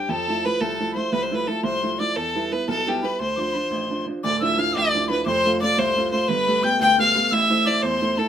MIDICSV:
0, 0, Header, 1, 4, 480
1, 0, Start_track
1, 0, Tempo, 343643
1, 122, Time_signature, 6, 3, 24, 8
1, 11571, End_track
2, 0, Start_track
2, 0, Title_t, "Tin whistle"
2, 0, Program_c, 0, 75
2, 0, Note_on_c, 0, 79, 74
2, 135, Note_on_c, 0, 81, 82
2, 156, Note_off_c, 0, 79, 0
2, 628, Note_on_c, 0, 83, 77
2, 649, Note_off_c, 0, 81, 0
2, 847, Note_off_c, 0, 83, 0
2, 856, Note_on_c, 0, 81, 73
2, 1254, Note_off_c, 0, 81, 0
2, 1291, Note_on_c, 0, 83, 50
2, 1364, Note_on_c, 0, 84, 72
2, 1385, Note_off_c, 0, 83, 0
2, 1582, Note_off_c, 0, 84, 0
2, 1591, Note_on_c, 0, 83, 90
2, 1741, Note_off_c, 0, 83, 0
2, 1918, Note_on_c, 0, 83, 70
2, 2071, Note_on_c, 0, 81, 80
2, 2092, Note_off_c, 0, 83, 0
2, 2286, Note_on_c, 0, 84, 89
2, 2307, Note_off_c, 0, 81, 0
2, 2787, Note_on_c, 0, 86, 87
2, 2808, Note_off_c, 0, 84, 0
2, 3003, Note_off_c, 0, 86, 0
2, 3011, Note_on_c, 0, 81, 85
2, 3411, Note_off_c, 0, 81, 0
2, 3738, Note_on_c, 0, 81, 78
2, 4193, Note_off_c, 0, 81, 0
2, 4222, Note_on_c, 0, 83, 68
2, 4458, Note_on_c, 0, 84, 70
2, 4479, Note_off_c, 0, 83, 0
2, 4695, Note_on_c, 0, 86, 64
2, 4709, Note_off_c, 0, 84, 0
2, 4750, Note_on_c, 0, 84, 70
2, 4764, Note_off_c, 0, 86, 0
2, 4933, Note_on_c, 0, 83, 64
2, 4947, Note_off_c, 0, 84, 0
2, 4987, Note_on_c, 0, 84, 70
2, 5001, Note_off_c, 0, 83, 0
2, 5669, Note_off_c, 0, 84, 0
2, 5911, Note_on_c, 0, 86, 91
2, 6138, Note_off_c, 0, 86, 0
2, 6146, Note_on_c, 0, 88, 90
2, 6405, Note_on_c, 0, 89, 97
2, 6426, Note_off_c, 0, 88, 0
2, 6630, Note_on_c, 0, 86, 86
2, 6651, Note_off_c, 0, 89, 0
2, 7097, Note_on_c, 0, 83, 80
2, 7118, Note_off_c, 0, 86, 0
2, 7324, Note_off_c, 0, 83, 0
2, 7332, Note_on_c, 0, 86, 94
2, 7378, Note_on_c, 0, 84, 102
2, 7392, Note_off_c, 0, 86, 0
2, 7789, Note_off_c, 0, 84, 0
2, 7826, Note_on_c, 0, 86, 100
2, 8053, Note_off_c, 0, 86, 0
2, 8053, Note_on_c, 0, 86, 84
2, 8110, Note_on_c, 0, 84, 91
2, 8124, Note_off_c, 0, 86, 0
2, 8542, Note_off_c, 0, 84, 0
2, 8552, Note_on_c, 0, 84, 99
2, 8781, Note_on_c, 0, 83, 109
2, 8802, Note_off_c, 0, 84, 0
2, 9264, Note_on_c, 0, 91, 107
2, 9285, Note_off_c, 0, 83, 0
2, 9492, Note_off_c, 0, 91, 0
2, 9509, Note_on_c, 0, 91, 113
2, 9766, Note_on_c, 0, 89, 100
2, 9787, Note_off_c, 0, 91, 0
2, 10209, Note_on_c, 0, 88, 100
2, 10230, Note_off_c, 0, 89, 0
2, 10689, Note_on_c, 0, 86, 90
2, 10710, Note_off_c, 0, 88, 0
2, 10921, Note_off_c, 0, 86, 0
2, 10921, Note_on_c, 0, 86, 94
2, 10978, Note_on_c, 0, 84, 102
2, 10992, Note_off_c, 0, 86, 0
2, 11421, Note_on_c, 0, 81, 86
2, 11442, Note_off_c, 0, 84, 0
2, 11571, Note_off_c, 0, 81, 0
2, 11571, End_track
3, 0, Start_track
3, 0, Title_t, "Fiddle"
3, 0, Program_c, 1, 110
3, 0, Note_on_c, 1, 67, 77
3, 143, Note_on_c, 1, 69, 98
3, 164, Note_off_c, 1, 67, 0
3, 627, Note_on_c, 1, 71, 99
3, 648, Note_off_c, 1, 69, 0
3, 849, Note_on_c, 1, 69, 90
3, 870, Note_off_c, 1, 71, 0
3, 1329, Note_off_c, 1, 69, 0
3, 1338, Note_on_c, 1, 72, 72
3, 1573, Note_on_c, 1, 71, 94
3, 1593, Note_off_c, 1, 72, 0
3, 1714, Note_on_c, 1, 72, 76
3, 1735, Note_off_c, 1, 71, 0
3, 1882, Note_on_c, 1, 71, 85
3, 1903, Note_off_c, 1, 72, 0
3, 2058, Note_on_c, 1, 69, 92
3, 2079, Note_off_c, 1, 71, 0
3, 2290, Note_off_c, 1, 69, 0
3, 2299, Note_on_c, 1, 72, 89
3, 2752, Note_off_c, 1, 72, 0
3, 2788, Note_on_c, 1, 74, 84
3, 3023, Note_on_c, 1, 69, 95
3, 3044, Note_off_c, 1, 74, 0
3, 3518, Note_on_c, 1, 71, 98
3, 3539, Note_off_c, 1, 69, 0
3, 3743, Note_off_c, 1, 71, 0
3, 3770, Note_on_c, 1, 69, 89
3, 4025, Note_on_c, 1, 67, 78
3, 4046, Note_off_c, 1, 69, 0
3, 4255, Note_on_c, 1, 71, 79
3, 4276, Note_off_c, 1, 67, 0
3, 4472, Note_off_c, 1, 71, 0
3, 4485, Note_on_c, 1, 72, 90
3, 5626, Note_off_c, 1, 72, 0
3, 5929, Note_on_c, 1, 74, 99
3, 6156, Note_off_c, 1, 74, 0
3, 6204, Note_on_c, 1, 76, 86
3, 6437, Note_on_c, 1, 77, 102
3, 6458, Note_off_c, 1, 76, 0
3, 6643, Note_off_c, 1, 77, 0
3, 6667, Note_on_c, 1, 74, 97
3, 7099, Note_off_c, 1, 74, 0
3, 7135, Note_on_c, 1, 71, 87
3, 7336, Note_off_c, 1, 71, 0
3, 7352, Note_on_c, 1, 72, 115
3, 7799, Note_off_c, 1, 72, 0
3, 7849, Note_on_c, 1, 74, 108
3, 8081, Note_on_c, 1, 72, 111
3, 8102, Note_off_c, 1, 74, 0
3, 8534, Note_off_c, 1, 72, 0
3, 8543, Note_on_c, 1, 72, 98
3, 8776, Note_on_c, 1, 71, 105
3, 8797, Note_off_c, 1, 72, 0
3, 9280, Note_on_c, 1, 79, 113
3, 9301, Note_off_c, 1, 71, 0
3, 9500, Note_off_c, 1, 79, 0
3, 9513, Note_on_c, 1, 79, 101
3, 9742, Note_off_c, 1, 79, 0
3, 9782, Note_on_c, 1, 77, 110
3, 10240, Note_on_c, 1, 76, 116
3, 10261, Note_off_c, 1, 77, 0
3, 10706, Note_on_c, 1, 74, 106
3, 10727, Note_off_c, 1, 76, 0
3, 10929, Note_on_c, 1, 72, 104
3, 10950, Note_off_c, 1, 74, 0
3, 11432, Note_on_c, 1, 69, 91
3, 11453, Note_off_c, 1, 72, 0
3, 11571, Note_off_c, 1, 69, 0
3, 11571, End_track
4, 0, Start_track
4, 0, Title_t, "Upright piano"
4, 0, Program_c, 2, 0
4, 125, Note_on_c, 2, 41, 70
4, 390, Note_on_c, 2, 53, 50
4, 396, Note_on_c, 2, 57, 46
4, 406, Note_on_c, 2, 64, 52
4, 600, Note_off_c, 2, 41, 0
4, 601, Note_off_c, 2, 53, 0
4, 607, Note_off_c, 2, 57, 0
4, 613, Note_off_c, 2, 64, 0
4, 622, Note_on_c, 2, 53, 45
4, 628, Note_on_c, 2, 57, 39
4, 634, Note_on_c, 2, 64, 48
4, 850, Note_on_c, 2, 36, 57
4, 1012, Note_off_c, 2, 53, 0
4, 1015, Note_off_c, 2, 57, 0
4, 1019, Note_off_c, 2, 64, 0
4, 1115, Note_on_c, 2, 53, 48
4, 1119, Note_on_c, 2, 57, 47
4, 1122, Note_on_c, 2, 64, 45
4, 1312, Note_off_c, 2, 53, 0
4, 1323, Note_off_c, 2, 57, 0
4, 1324, Note_off_c, 2, 36, 0
4, 1328, Note_off_c, 2, 64, 0
4, 1333, Note_on_c, 2, 53, 45
4, 1344, Note_on_c, 2, 57, 43
4, 1349, Note_on_c, 2, 64, 50
4, 1571, Note_on_c, 2, 36, 62
4, 1727, Note_off_c, 2, 53, 0
4, 1734, Note_off_c, 2, 57, 0
4, 1738, Note_off_c, 2, 64, 0
4, 1830, Note_on_c, 2, 53, 50
4, 1840, Note_on_c, 2, 57, 51
4, 1842, Note_on_c, 2, 64, 59
4, 2040, Note_off_c, 2, 57, 0
4, 2041, Note_off_c, 2, 53, 0
4, 2047, Note_off_c, 2, 36, 0
4, 2047, Note_off_c, 2, 64, 0
4, 2061, Note_on_c, 2, 57, 44
4, 2062, Note_on_c, 2, 53, 46
4, 2068, Note_on_c, 2, 64, 58
4, 2282, Note_on_c, 2, 36, 62
4, 2454, Note_off_c, 2, 53, 0
4, 2454, Note_off_c, 2, 57, 0
4, 2458, Note_off_c, 2, 64, 0
4, 2547, Note_on_c, 2, 53, 48
4, 2551, Note_on_c, 2, 57, 42
4, 2557, Note_on_c, 2, 64, 52
4, 2763, Note_off_c, 2, 36, 0
4, 2766, Note_off_c, 2, 57, 0
4, 2768, Note_off_c, 2, 53, 0
4, 2775, Note_off_c, 2, 64, 0
4, 2787, Note_on_c, 2, 57, 45
4, 2789, Note_on_c, 2, 53, 47
4, 2796, Note_on_c, 2, 64, 53
4, 2970, Note_off_c, 2, 57, 0
4, 2972, Note_off_c, 2, 53, 0
4, 2976, Note_off_c, 2, 64, 0
4, 3022, Note_on_c, 2, 40, 63
4, 3283, Note_on_c, 2, 55, 52
4, 3292, Note_on_c, 2, 59, 49
4, 3294, Note_on_c, 2, 64, 64
4, 3487, Note_off_c, 2, 55, 0
4, 3490, Note_off_c, 2, 59, 0
4, 3495, Note_off_c, 2, 40, 0
4, 3501, Note_off_c, 2, 64, 0
4, 3508, Note_on_c, 2, 55, 40
4, 3511, Note_on_c, 2, 59, 47
4, 3522, Note_on_c, 2, 64, 52
4, 3745, Note_on_c, 2, 35, 67
4, 3899, Note_off_c, 2, 55, 0
4, 3901, Note_off_c, 2, 59, 0
4, 3908, Note_off_c, 2, 64, 0
4, 4000, Note_on_c, 2, 55, 50
4, 4010, Note_on_c, 2, 59, 42
4, 4014, Note_on_c, 2, 64, 58
4, 4204, Note_off_c, 2, 55, 0
4, 4211, Note_off_c, 2, 59, 0
4, 4214, Note_off_c, 2, 64, 0
4, 4217, Note_off_c, 2, 35, 0
4, 4225, Note_on_c, 2, 55, 51
4, 4232, Note_on_c, 2, 59, 38
4, 4235, Note_on_c, 2, 64, 44
4, 4411, Note_off_c, 2, 55, 0
4, 4415, Note_off_c, 2, 59, 0
4, 4417, Note_off_c, 2, 64, 0
4, 4463, Note_on_c, 2, 38, 58
4, 4711, Note_on_c, 2, 53, 57
4, 4720, Note_on_c, 2, 60, 47
4, 4726, Note_on_c, 2, 62, 53
4, 4930, Note_off_c, 2, 53, 0
4, 4936, Note_off_c, 2, 38, 0
4, 4938, Note_off_c, 2, 60, 0
4, 4938, Note_off_c, 2, 62, 0
4, 4951, Note_on_c, 2, 53, 49
4, 4959, Note_on_c, 2, 60, 39
4, 4959, Note_on_c, 2, 62, 56
4, 5180, Note_on_c, 2, 33, 59
4, 5342, Note_off_c, 2, 53, 0
4, 5347, Note_off_c, 2, 60, 0
4, 5347, Note_off_c, 2, 62, 0
4, 5445, Note_on_c, 2, 53, 40
4, 5453, Note_on_c, 2, 60, 47
4, 5455, Note_on_c, 2, 62, 52
4, 5653, Note_off_c, 2, 53, 0
4, 5655, Note_off_c, 2, 33, 0
4, 5662, Note_off_c, 2, 60, 0
4, 5665, Note_off_c, 2, 62, 0
4, 5674, Note_on_c, 2, 53, 40
4, 5683, Note_on_c, 2, 60, 38
4, 5686, Note_on_c, 2, 62, 48
4, 5856, Note_off_c, 2, 53, 0
4, 5862, Note_off_c, 2, 60, 0
4, 5864, Note_off_c, 2, 62, 0
4, 5920, Note_on_c, 2, 26, 73
4, 5921, Note_on_c, 2, 38, 66
4, 6162, Note_on_c, 2, 53, 60
4, 6174, Note_on_c, 2, 62, 52
4, 6175, Note_on_c, 2, 64, 62
4, 6368, Note_off_c, 2, 53, 0
4, 6376, Note_off_c, 2, 62, 0
4, 6378, Note_off_c, 2, 64, 0
4, 6385, Note_off_c, 2, 38, 0
4, 6389, Note_on_c, 2, 53, 58
4, 6397, Note_on_c, 2, 62, 44
4, 6399, Note_on_c, 2, 64, 59
4, 6644, Note_on_c, 2, 33, 69
4, 6780, Note_off_c, 2, 53, 0
4, 6785, Note_off_c, 2, 62, 0
4, 6786, Note_off_c, 2, 64, 0
4, 6897, Note_on_c, 2, 53, 51
4, 6901, Note_on_c, 2, 62, 41
4, 6910, Note_on_c, 2, 64, 58
4, 7094, Note_off_c, 2, 53, 0
4, 7100, Note_off_c, 2, 62, 0
4, 7101, Note_off_c, 2, 64, 0
4, 7106, Note_off_c, 2, 33, 0
4, 7115, Note_on_c, 2, 53, 49
4, 7121, Note_on_c, 2, 62, 50
4, 7122, Note_on_c, 2, 64, 58
4, 7292, Note_off_c, 2, 26, 0
4, 7296, Note_off_c, 2, 53, 0
4, 7300, Note_off_c, 2, 62, 0
4, 7300, Note_off_c, 2, 64, 0
4, 7351, Note_on_c, 2, 41, 66
4, 7356, Note_on_c, 2, 29, 63
4, 7619, Note_on_c, 2, 57, 60
4, 7628, Note_on_c, 2, 60, 52
4, 7632, Note_on_c, 2, 65, 63
4, 7818, Note_off_c, 2, 41, 0
4, 7834, Note_off_c, 2, 57, 0
4, 7845, Note_off_c, 2, 60, 0
4, 7848, Note_off_c, 2, 65, 0
4, 7855, Note_on_c, 2, 57, 59
4, 7866, Note_on_c, 2, 60, 49
4, 7869, Note_on_c, 2, 65, 65
4, 8074, Note_on_c, 2, 36, 66
4, 8234, Note_off_c, 2, 57, 0
4, 8240, Note_off_c, 2, 60, 0
4, 8242, Note_off_c, 2, 65, 0
4, 8332, Note_on_c, 2, 57, 51
4, 8342, Note_on_c, 2, 60, 48
4, 8346, Note_on_c, 2, 65, 65
4, 8532, Note_off_c, 2, 57, 0
4, 8538, Note_off_c, 2, 36, 0
4, 8538, Note_off_c, 2, 60, 0
4, 8545, Note_off_c, 2, 65, 0
4, 8553, Note_on_c, 2, 57, 57
4, 8559, Note_on_c, 2, 60, 46
4, 8566, Note_on_c, 2, 65, 60
4, 8727, Note_off_c, 2, 29, 0
4, 8733, Note_off_c, 2, 57, 0
4, 8736, Note_off_c, 2, 60, 0
4, 8741, Note_off_c, 2, 65, 0
4, 8783, Note_on_c, 2, 43, 69
4, 8784, Note_on_c, 2, 31, 60
4, 9043, Note_on_c, 2, 57, 60
4, 9052, Note_on_c, 2, 67, 56
4, 9057, Note_on_c, 2, 59, 50
4, 9246, Note_off_c, 2, 57, 0
4, 9249, Note_off_c, 2, 59, 0
4, 9251, Note_off_c, 2, 43, 0
4, 9252, Note_off_c, 2, 67, 0
4, 9267, Note_on_c, 2, 57, 55
4, 9270, Note_on_c, 2, 59, 47
4, 9273, Note_on_c, 2, 67, 53
4, 9500, Note_on_c, 2, 38, 74
4, 9654, Note_off_c, 2, 57, 0
4, 9656, Note_off_c, 2, 59, 0
4, 9658, Note_off_c, 2, 67, 0
4, 9751, Note_on_c, 2, 57, 51
4, 9758, Note_on_c, 2, 59, 44
4, 9769, Note_on_c, 2, 67, 62
4, 9968, Note_off_c, 2, 38, 0
4, 9971, Note_off_c, 2, 57, 0
4, 9978, Note_off_c, 2, 59, 0
4, 9980, Note_off_c, 2, 67, 0
4, 9992, Note_on_c, 2, 57, 51
4, 9999, Note_on_c, 2, 59, 48
4, 10001, Note_on_c, 2, 67, 55
4, 10157, Note_off_c, 2, 31, 0
4, 10170, Note_off_c, 2, 57, 0
4, 10174, Note_off_c, 2, 59, 0
4, 10176, Note_off_c, 2, 67, 0
4, 10225, Note_on_c, 2, 45, 67
4, 10226, Note_on_c, 2, 33, 72
4, 10476, Note_on_c, 2, 57, 57
4, 10478, Note_on_c, 2, 60, 53
4, 10478, Note_on_c, 2, 64, 57
4, 10678, Note_off_c, 2, 57, 0
4, 10685, Note_off_c, 2, 64, 0
4, 10686, Note_off_c, 2, 60, 0
4, 10689, Note_off_c, 2, 45, 0
4, 10699, Note_on_c, 2, 57, 51
4, 10706, Note_on_c, 2, 64, 61
4, 10707, Note_on_c, 2, 60, 45
4, 10935, Note_on_c, 2, 40, 71
4, 11087, Note_off_c, 2, 57, 0
4, 11091, Note_off_c, 2, 64, 0
4, 11092, Note_off_c, 2, 60, 0
4, 11189, Note_on_c, 2, 60, 47
4, 11192, Note_on_c, 2, 57, 51
4, 11200, Note_on_c, 2, 64, 56
4, 11393, Note_off_c, 2, 57, 0
4, 11395, Note_off_c, 2, 60, 0
4, 11402, Note_off_c, 2, 40, 0
4, 11406, Note_off_c, 2, 64, 0
4, 11414, Note_on_c, 2, 57, 54
4, 11416, Note_on_c, 2, 60, 41
4, 11427, Note_on_c, 2, 64, 53
4, 11571, Note_off_c, 2, 33, 0
4, 11571, Note_off_c, 2, 57, 0
4, 11571, Note_off_c, 2, 60, 0
4, 11571, Note_off_c, 2, 64, 0
4, 11571, End_track
0, 0, End_of_file